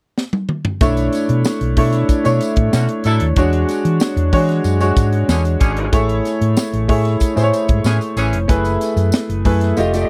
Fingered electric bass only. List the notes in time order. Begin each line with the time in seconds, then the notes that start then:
0.81 B1
1.29 B2
1.61 B1
1.77 B2
2.09 muted fingered electric bass stroke
2.26 B2
2.57 A2
2.73 B2
3.05 A2
3.21 D#2
3.37 E2
3.85 E3
4.16 E2
4.33 E3
4.64 F#2
4.97 G#2
5.28 E2
5.61 G#1
5.92 A1
6.41 A2
6.73 A1
6.89 A2
7.21 muted fingered electric bass stroke
7.37 A2
7.69 G#2
7.84 A2
8.16 A1
8.33 F1
8.49 F#1
8.96 F#2
9.29 F#1
9.45 F#2
9.77 F1